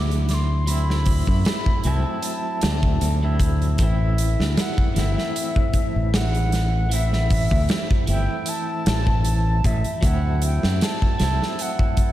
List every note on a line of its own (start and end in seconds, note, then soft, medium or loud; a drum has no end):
0.00 1.24 D2 medium
0.00 0.63 F#3 medium
0.00 0.63 A3 medium
0.00 0.64 C4 medium
0.00 0.65 E4 medium
0.11 closed hi-hat soft
0.29 0.35 D6 medium
0.29 snare soft
0.29 closed hi-hat medium
0.34 0.69 C6 medium
0.67 1.80 F#3 medium
0.67 1.81 A3 medium
0.67 1.81 C4 medium
0.67 1.84 B5 loud
0.67 closed hi-hat medium
0.72 1.82 E4 medium
0.90 snare soft
1.06 kick medium
1.06 open hi-hat medium
1.27 1.43 F#2 medium
1.27 kick medium
1.45 snare loud
1.45 closed hi-hat medium
1.66 kick medium
1.83 2.03 C2 medium
1.83 2.59 F#3 medium
1.83 2.59 A3 medium
1.83 2.60 C4 medium
1.83 2.60 E4 medium
1.83 3.36 A5 medium
1.83 closed hi-hat medium
2.22 closed hi-hat medium
2.61 3.01 D2 medium
2.61 3.17 F#3 medium
2.61 3.18 A3 medium
2.61 3.18 C4 medium
2.61 3.18 D4 loud
2.61 snare loud
2.61 closed hi-hat medium
2.83 kick medium
3.01 3.76 D2 medium
3.01 closed hi-hat medium
3.22 3.75 F#3 medium
3.22 3.75 A3 medium
3.22 3.76 C4 medium
3.22 3.76 E4 medium
3.40 kick loud
3.40 closed hi-hat medium
3.62 closed hi-hat soft
3.78 4.35 A1 medium
3.78 4.91 E3 medium
3.78 4.92 A3 medium
3.78 4.93 C4 medium
3.78 4.54 E5 medium
3.78 kick loud
3.78 closed hi-hat medium
3.83 4.94 E4 medium
4.18 closed hi-hat medium
4.40 4.55 D2 medium
4.40 snare soft
4.57 5.00 F#5 medium
4.57 snare loud
4.57 closed hi-hat medium
4.78 kick loud
4.94 5.15 G1 medium
4.94 6.86 E3 medium
4.94 6.86 A3 medium
4.94 6.87 C4 medium
4.94 6.16 E5 medium
4.94 snare soft
4.94 closed hi-hat medium
4.99 6.88 E4 medium
5.18 snare soft
5.36 closed hi-hat medium
5.56 kick medium
5.73 kick medium
5.73 closed hi-hat medium
5.96 7.47 A1 medium
6.14 6.94 F#5 loud
6.14 snare loud
6.14 closed hi-hat medium
6.35 closed hi-hat soft
6.52 snare soft
6.52 closed hi-hat medium
6.90 8.03 E3 medium
6.90 8.03 A3 medium
6.90 8.04 C4 medium
6.90 7.82 E5 loud
6.90 closed hi-hat medium
6.94 8.05 E4 medium
7.13 snare soft
7.30 kick medium
7.30 open hi-hat medium
7.51 7.67 D2 loud
7.51 kick medium
7.69 snare loud
7.69 closed hi-hat medium
7.91 kick loud
8.07 8.27 G1 medium
8.07 9.98 E3 medium
8.07 9.99 A3 medium
8.07 9.99 C4 medium
8.07 8.50 G5 loud
8.07 closed hi-hat medium
8.12 10.00 E4 medium
8.46 9.67 A5 loud
8.46 closed hi-hat medium
8.86 9.61 A1 loud
8.86 snare loud
8.86 closed hi-hat medium
9.07 kick medium
9.25 closed hi-hat medium
9.64 9.83 A1 medium
9.64 10.07 E5 medium
9.64 kick medium
9.64 closed hi-hat medium
9.84 closed hi-hat soft
10.01 10.59 D2 medium
10.01 11.14 F#3 medium
10.01 11.15 A3 medium
10.01 11.16 C4 medium
10.01 10.43 F#5 loud
10.01 kick loud
10.01 closed hi-hat medium
10.06 11.17 E4 medium
10.42 10.84 G5 loud
10.42 closed hi-hat medium
10.63 10.79 F#2 medium
10.63 snare soft
10.81 11.63 A5 loud
10.81 snare loud
10.81 closed hi-hat medium
11.02 kick medium
11.19 11.39 C2 medium
11.19 12.12 F#3 medium
11.19 12.12 A3 medium
11.19 12.12 C4 medium
11.19 snare soft
11.19 closed hi-hat medium
11.23 12.12 E4 medium
11.42 snare soft
11.59 12.12 F#5 medium
11.59 closed hi-hat medium
11.79 kick medium
11.97 kick medium
11.97 closed hi-hat medium